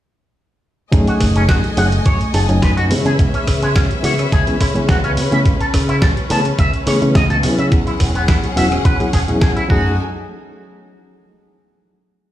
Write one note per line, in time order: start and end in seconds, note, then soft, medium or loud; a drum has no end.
0.92 1.03 F#2 loud
0.92 1.72 F#3 medium
0.92 1.72 A3 medium
0.92 2.89 A3 medium
0.92 1.72 C#4 medium
0.92 1.72 D#4 medium
0.92 1.73 G#4 loud
0.92 2.89 D#5 medium
0.92 2.89 G#5 medium
0.92 kick loud
0.92 closed hi-hat medium
1.07 1.12 F#4 medium
1.07 closed hi-hat soft
1.20 1.51 F#1 loud
1.20 kick medium
1.20 cross-stick medium
1.20 open hi-hat loud
1.36 1.43 C#4 loud
1.36 closed hi-hat soft
1.49 1.60 F#2 medium
1.49 1.54 F#4 medium
1.49 kick loud
1.49 snare loud
1.49 closed hi-hat medium
1.64 closed hi-hat soft
1.77 1.98 F#1 loud
1.77 1.87 F#3 medium
1.77 1.87 A3 medium
1.77 1.87 C#4 medium
1.77 1.87 D#4 medium
1.77 1.87 G#4 loud
1.77 1.85 F#5 medium
1.77 open hi-hat medium
1.92 closed hi-hat soft
2.06 2.17 F#2 medium
2.06 2.17 C#5 medium
2.06 kick loud
2.06 closed hi-hat medium
2.21 closed hi-hat soft
2.33 2.45 F#1 medium
2.33 2.43 F#3 medium
2.33 2.43 A3 medium
2.33 2.43 C#4 medium
2.33 2.44 D#4 medium
2.33 2.44 G#4 medium
2.33 2.39 A4 medium
2.33 open hi-hat loud
2.49 2.64 F#1 medium
2.49 2.87 F#3 medium
2.49 2.87 A3 medium
2.49 2.88 C#4 medium
2.49 2.88 D#4 medium
2.49 2.88 G#5 medium
2.49 closed hi-hat soft
2.62 2.92 F#2 medium
2.62 2.70 B4 medium
2.62 kick loud
2.62 snare loud
2.62 closed hi-hat medium
2.77 2.84 F#4 loud
2.77 closed hi-hat soft
2.89 3.01 C#3 medium
2.89 4.00 E3 medium
2.89 4.00 G#3 medium
2.89 4.01 B3 medium
2.89 4.01 C#4 medium
2.89 7.68 C#4 medium
2.89 4.01 G#4 medium
2.89 7.68 B4 medium
2.89 5.15 E5 medium
2.89 open hi-hat loud
3.05 3.15 C#3 medium
3.05 3.12 G#4 medium
3.05 closed hi-hat soft
3.19 3.30 C#2 loud
3.19 kick loud
3.19 closed hi-hat medium
3.34 3.38 C#4 medium
3.34 closed hi-hat soft
3.47 3.77 C#3 loud
3.47 kick medium
3.47 cross-stick medium
3.47 open hi-hat loud
3.62 3.69 G#3 loud
3.62 closed hi-hat soft
3.76 3.86 C#2 medium
3.76 3.80 C#4 medium
3.76 kick loud
3.76 snare loud
3.76 closed hi-hat medium
3.91 closed hi-hat soft
4.03 4.25 C#3 loud
4.03 4.13 E3 medium
4.03 4.13 G#3 medium
4.03 4.13 B3 medium
4.03 4.13 C#4 medium
4.03 4.13 F#4 medium
4.03 4.12 C#5 medium
4.03 open hi-hat loud
4.19 cross-stick medium
4.19 closed hi-hat soft
4.32 4.43 C#2 medium
4.32 4.44 G#4 medium
4.32 kick loud
4.32 closed hi-hat medium
4.47 4.55 E3 medium
4.47 4.55 G#3 medium
4.47 4.56 B3 medium
4.47 4.56 C#4 medium
4.47 4.56 G#4 medium
4.47 closed hi-hat soft
4.61 4.71 C#3 medium
4.61 4.65 E4 medium
4.61 kick medium
4.61 open hi-hat loud
4.75 4.91 C#3 medium
4.75 5.15 E3 medium
4.75 5.15 G#3 medium
4.75 5.15 B3 medium
4.75 5.16 C#4 medium
4.75 5.16 G#4 medium
4.75 closed hi-hat soft
4.89 5.19 C#2 medium
4.89 4.97 F#4 medium
4.89 kick loud
4.89 snare loud
4.89 closed hi-hat medium
5.04 5.11 C#4 loud
5.04 closed hi-hat soft
5.17 5.28 C#3 medium
5.17 open hi-hat loud
5.32 5.42 C#3 medium
5.32 5.45 E3 medium
5.32 5.45 A3 medium
5.32 5.45 B3 medium
5.32 5.46 C#4 medium
5.32 5.46 G#4 medium
5.32 5.39 E5 medium
5.32 closed hi-hat soft
5.45 5.56 C#2 loud
5.45 kick loud
5.45 closed hi-hat medium
5.61 5.65 A4 medium
5.61 closed hi-hat soft
5.74 6.04 C#3 loud
5.74 kick medium
5.74 cross-stick medium
5.74 open hi-hat loud
5.89 5.95 E4 loud
5.89 closed hi-hat soft
6.02 6.13 C#2 medium
6.02 6.07 A4 medium
6.02 kick loud
6.02 snare loud
6.02 closed hi-hat medium
6.17 closed hi-hat soft
6.30 6.51 C#3 loud
6.30 6.39 E3 medium
6.30 6.40 A3 medium
6.30 6.40 B3 medium
6.30 6.40 C#4 medium
6.30 6.40 G#4 loud
6.30 6.38 A5 medium
6.30 open hi-hat loud
6.45 closed hi-hat soft
6.59 6.70 C#2 medium
6.59 6.70 E5 medium
6.59 kick loud
6.59 closed hi-hat medium
6.74 closed hi-hat soft
6.86 6.98 C#3 medium
6.86 6.96 E3 medium
6.86 6.96 A3 medium
6.86 6.96 B3 medium
6.86 6.96 C#4 medium
6.86 6.97 G#4 medium
6.86 6.92 C#5 medium
6.86 open hi-hat loud
7.01 7.17 C#3 medium
7.01 7.40 E3 medium
7.01 7.40 A3 medium
7.01 7.40 B3 medium
7.01 7.41 C#4 medium
7.01 closed hi-hat soft
7.15 7.45 C#2 medium
7.15 7.23 D#5 medium
7.15 kick loud
7.15 snare loud
7.15 closed hi-hat medium
7.30 7.37 A4 loud
7.30 closed hi-hat soft
7.43 7.54 C#3 medium
7.43 8.53 F#3 medium
7.43 8.53 B3 medium
7.43 8.54 C#4 medium
7.43 8.54 E4 medium
7.43 8.54 G#4 medium
7.43 open hi-hat loud
7.59 7.68 C#3 medium
7.59 7.65 E5 medium
7.59 closed hi-hat soft
7.71 7.83 E2 loud
7.71 9.68 C#4 medium
7.71 9.68 G#4 medium
7.71 9.68 F#5 medium
7.71 kick loud
7.71 closed hi-hat medium
7.87 7.91 E4 medium
7.87 closed hi-hat soft
8.00 8.30 E1 loud
8.00 kick medium
8.00 cross-stick medium
8.00 open hi-hat loud
8.15 8.22 B3 loud
8.15 closed hi-hat soft
8.28 8.39 E2 medium
8.28 8.33 E4 medium
8.28 kick loud
8.28 snare loud
8.28 closed hi-hat medium
8.44 closed hi-hat soft
8.56 8.77 E1 loud
8.56 8.66 F#3 medium
8.56 8.66 B3 medium
8.56 8.66 C#4 medium
8.56 8.66 E4 medium
8.56 8.66 F#4 medium
8.56 8.64 E5 medium
8.56 open hi-hat medium
8.72 cross-stick medium
8.72 closed hi-hat soft
8.85 8.96 E2 loud
8.85 8.96 B4 medium
8.85 kick loud
8.85 closed hi-hat medium
9.00 9.08 F#3 medium
9.00 9.08 B3 medium
9.00 9.09 C#4 medium
9.00 9.09 E4 medium
9.00 9.09 G#4 medium
9.00 closed hi-hat soft
9.13 9.24 E1 medium
9.13 9.18 G#4 medium
9.13 kick medium
9.13 snare soft
9.13 open hi-hat loud
9.28 9.38 E1 medium
9.28 9.68 F#3 medium
9.28 9.70 B3 medium
9.28 9.69 C#4 medium
9.28 9.70 E4 medium
9.28 9.70 G#4 medium
9.28 closed hi-hat soft
9.41 9.52 E2 medium
9.41 9.49 G#4 medium
9.41 kick loud
9.41 snare loud
9.41 closed hi-hat medium
9.56 9.63 E4 loud
9.56 closed hi-hat soft
9.69 9.96 F#2 loud
9.69 9.91 F#3 medium
9.69 9.91 A3 medium
9.69 9.91 C#4 medium
9.69 9.97 D#4 medium
9.69 9.92 D#4 medium
9.69 9.96 F#4 loud
9.69 9.92 G#4 loud
9.69 9.97 A4 medium
9.69 9.97 G#5 medium
9.69 kick loud